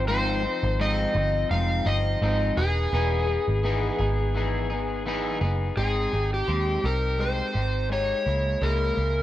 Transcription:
0.00 0.45 G#1 medium
0.08 0.44 G#2 medium
0.08 0.44 F3 medium
0.08 0.44 C4 medium
0.08 0.42 D#4 medium
0.08 0.82 C5 loud
0.43 0.79 F3 soft
0.43 0.80 C4 soft
0.43 0.79 D#4 soft
0.63 1.05 G#1 loud
0.79 1.15 G#2 medium
0.79 1.15 F3 medium
0.79 1.15 C4 medium
0.79 1.13 D#4 medium
0.79 1.47 D#5 loud
1.14 1.44 G1 loud
1.14 1.50 F3 soft
1.14 1.51 C4 medium
1.14 1.50 D#4 medium
1.50 1.79 F1 medium
1.50 1.86 G#2 medium
1.50 1.86 F3 medium
1.50 1.87 C4 medium
1.50 1.85 D#4 medium
1.50 1.87 F5 loud
1.86 2.14 G1 loud
1.86 2.21 F3 medium
1.86 2.22 C4 soft
1.86 2.22 D#4 medium
1.86 2.59 D#5 loud
2.22 2.50 G#1 loud
2.22 2.57 G#2 medium
2.22 2.57 F3 medium
2.22 2.58 C4 loud
2.22 2.57 D#4 medium
2.57 2.86 E1 medium
2.57 2.92 B3 soft
2.57 2.93 D#4 medium
2.57 2.92 G#4 medium
2.57 5.02 G#4 medium
2.92 3.37 E1 medium
2.92 3.28 E3 medium
2.92 3.29 B3 medium
2.92 3.28 D#4 medium
2.92 3.26 G#4 medium
3.27 3.63 B3 soft
3.27 3.64 D#4 soft
3.27 3.63 G#4 medium
3.48 3.89 G#1 medium
3.63 3.99 E3 medium
3.63 4.00 B3 medium
3.63 3.99 D#4 medium
3.63 3.97 G#4 medium
3.98 5.38 G#1 loud
3.98 4.34 B3 medium
3.98 4.35 D#4 medium
3.98 4.34 G#4 medium
4.35 4.70 E3 medium
4.35 4.71 B3 medium
4.35 4.70 D#4 medium
4.35 4.69 G#4 medium
4.70 5.05 B3 medium
4.70 5.06 D#4 medium
4.70 5.06 G#4 medium
5.06 5.41 E3 medium
5.06 5.42 B3 medium
5.06 5.42 D#4 medium
5.06 5.40 G#4 loud
5.41 5.70 F#1 medium
5.41 5.77 B3 medium
5.41 5.77 D#4 medium
5.41 5.77 G#4 medium
5.77 6.06 G#1 medium
5.77 6.13 G#3 medium
5.77 6.13 C4 medium
5.77 6.12 D#4 medium
5.77 6.33 G#4 medium
6.12 6.41 G#1 medium
6.12 6.47 C4 soft
6.12 6.47 D#4 soft
6.12 6.48 G4 soft
6.34 6.86 G4 medium
6.47 6.77 D#2 medium
6.47 6.83 G#3 medium
6.47 6.84 C4 medium
6.47 6.83 D#4 medium
6.47 6.81 G4 medium
6.82 7.41 C2 loud
6.82 7.18 C4 soft
6.82 7.19 D#4 soft
6.82 7.19 G4 medium
6.82 7.21 A#4 medium
7.18 7.54 G#3 medium
7.18 7.55 C4 medium
7.18 7.54 D#4 medium
7.18 7.53 G4 medium
7.18 7.92 C5 loud
7.54 8.12 G#1 medium
7.54 7.92 C4 soft
7.54 7.90 D#4 soft
7.54 7.90 G4 soft
7.89 8.26 G#3 medium
7.89 8.25 D#4 medium
7.89 8.27 G4 medium
7.89 8.65 C#5 medium
8.26 8.55 C#2 medium
8.26 8.60 G#3 soft
8.26 8.61 A#3 soft
8.26 8.62 E4 medium
8.61 8.90 C#2 medium
8.61 8.97 C#3 medium
8.61 8.97 G#3 medium
8.61 8.97 A#3 medium
8.61 8.96 E4 medium
8.61 9.23 A#4 loud
8.97 9.23 C#2 medium
8.97 9.23 G#3 soft
8.97 9.23 A#3 soft
8.97 9.23 E4 soft

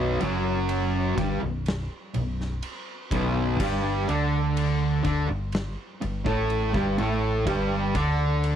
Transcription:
0.00 0.17 B0 loud
0.00 0.19 B1 loud
0.00 0.19 B2 loud
0.20 1.14 F#1 loud
0.20 1.15 F#2 loud
0.20 1.16 F#3 loud
0.20 ride medium
0.69 ride loud
1.16 1.40 G1 loud
1.16 1.39 G2 loud
1.16 1.40 G3 loud
1.16 kick loud
1.16 ride medium
1.41 1.87 B0 medium
1.41 1.80 B1 medium
1.66 snare loud
1.66 ride loud
2.14 2.60 B0 medium
2.14 2.53 B1 medium
2.14 ride medium
2.40 snare soft
2.62 ride loud
3.11 3.56 B0 loud
3.11 3.58 B1 loud
3.11 3.59 B2 loud
3.11 kick loud
3.11 ride medium
3.60 4.05 G1 loud
3.60 4.06 G2 loud
3.60 4.07 G3 loud
3.60 kick loud
3.60 crash loud
4.08 5.01 D2 loud
4.08 5.02 D3 loud
4.08 5.03 D4 loud
4.08 ride medium
4.57 ride loud
5.03 5.27 D2 loud
5.03 5.27 D3 medium
5.03 5.27 D4 loud
5.03 kick loud
5.03 ride medium
5.28 5.75 G1 medium
5.28 5.67 G2 medium
5.52 snare loud
5.52 ride loud
6.01 6.25 G1 medium
6.01 6.24 G2 medium
6.01 ride medium
6.25 6.71 A1 loud
6.25 6.72 A2 loud
6.25 6.73 A3 loud
6.25 kick loud
6.50 ride loud
6.74 6.97 G1 loud
6.74 6.97 G2 medium
6.74 6.97 G3 loud
6.74 kick loud
6.98 7.44 A1 medium
6.98 7.45 A2 loud
6.98 7.46 A3 loud
6.98 ride medium
7.46 7.92 G1 loud
7.46 7.93 G2 loud
7.46 7.93 G3 loud
7.46 kick loud
7.46 ride loud
7.95 8.56 D2 medium
7.95 8.56 D3 medium
7.95 8.56 D4 loud
7.95 kick loud
7.95 ride medium
8.44 ride loud

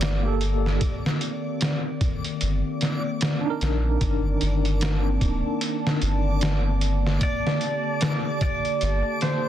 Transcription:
0.00 0.79 G1 medium
0.00 0.77 D3 medium
0.00 0.17 A#3 medium
0.00 0.77 A#3 medium
0.00 0.20 G4 medium
0.00 3.97 G4 medium
0.00 0.22 A4 medium
0.00 0.77 A4 medium
0.00 9.49 D5 medium
0.00 snare loud
0.00 closed hi-hat medium
0.23 0.78 A#3 medium
0.23 0.80 G4 medium
0.28 0.81 A4 medium
0.41 closed hi-hat medium
0.66 snare soft
0.81 7.17 D#3 medium
0.81 9.49 A#3 medium
0.81 7.17 C4 medium
0.81 kick loud
0.81 closed hi-hat medium
1.06 snare medium
1.21 closed hi-hat medium
1.61 snare loud
1.61 closed hi-hat medium
2.01 kick medium
2.01 closed hi-hat medium
2.24 closed hi-hat soft
2.41 2.63 G1 medium
2.41 closed hi-hat medium
2.81 snare soft
2.81 closed hi-hat medium
3.21 snare loud
3.21 closed hi-hat medium
3.41 6.57 D4 medium
3.45 6.60 D#4 medium
3.50 6.62 A#4 medium
3.61 3.98 A#1 medium
3.61 snare medium
3.61 closed hi-hat medium
4.01 4.38 G1 medium
4.01 7.18 A5 medium
4.01 kick loud
4.01 closed hi-hat medium
4.41 5.18 G1 medium
4.41 closed hi-hat medium
4.65 closed hi-hat soft
4.81 snare loud
4.81 closed hi-hat medium
5.21 5.42 D1 medium
5.21 kick medium
5.21 closed hi-hat medium
5.61 closed hi-hat medium
5.87 snare medium
6.02 7.19 G1 medium
6.02 closed hi-hat medium
6.41 snare loud
6.41 closed hi-hat medium
6.81 closed hi-hat medium
7.07 snare soft
7.21 9.49 D3 medium
7.21 9.49 G4 medium
7.21 8.41 D5 loud
7.21 9.49 A5 medium
7.21 kick loud
7.21 closed hi-hat medium
7.47 snare medium
7.61 closed hi-hat medium
8.01 snare loud
8.01 closed hi-hat medium
8.41 9.24 D5 loud
8.41 kick medium
8.41 closed hi-hat medium
8.65 closed hi-hat soft
8.81 9.03 G1 medium
8.81 closed hi-hat medium
9.21 9.49 C5 loud
9.21 snare soft
9.21 closed hi-hat medium

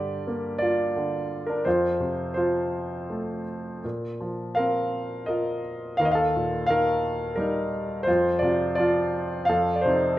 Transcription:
0.00 1.62 G2 soft
0.00 0.95 D3 soft
0.00 0.57 G4 medium
0.00 0.56 D5 medium
0.27 1.63 A#3 soft
0.58 1.45 F4 soft
0.58 1.50 D5 medium
0.96 1.64 D3 soft
1.46 1.65 D4 soft
1.46 1.66 A#4 soft
1.65 3.80 F2 soft
1.65 2.33 F4 soft
1.65 2.33 C5 medium
2.00 3.42 C3 soft
2.34 3.80 F3 soft
2.34 3.43 F4 soft
2.34 3.41 C5 soft
3.10 3.82 A3 soft
3.84 5.97 A#2 soft
4.20 5.61 F3 soft
4.55 5.97 C4 soft
4.55 5.25 A#4 soft
4.55 5.30 F5 medium
5.26 5.99 F4 soft
5.26 5.96 A#4 soft
5.26 6.01 D#5 medium
5.97 8.03 D#2 soft
5.97 6.06 F5 medium
6.01 6.07 A#4 medium
6.01 6.13 D#5 medium
6.12 6.67 A4 medium
6.12 6.65 F5 medium
6.36 7.69 A#2 soft
6.66 8.03 D#3 soft
6.66 7.34 A#4 medium
6.66 7.39 F5 medium
7.36 8.05 G3 soft
7.36 8.04 D#4 soft
7.36 8.08 A#4 medium
8.03 8.38 C5 medium
8.07 9.44 F2 soft
8.07 8.40 F4 medium
8.39 9.45 C3 soft
8.39 8.73 D5 medium
8.43 8.76 F4 soft
8.75 9.46 F3 soft
8.75 9.50 D5 medium
8.79 9.45 F4 medium
9.45 10.18 F2 soft
9.45 9.76 F5 medium
9.49 9.76 A4 medium
9.76 9.83 D5 soft
9.81 10.18 D#4 medium
9.81 10.19 C5 medium
9.86 10.19 C3 soft

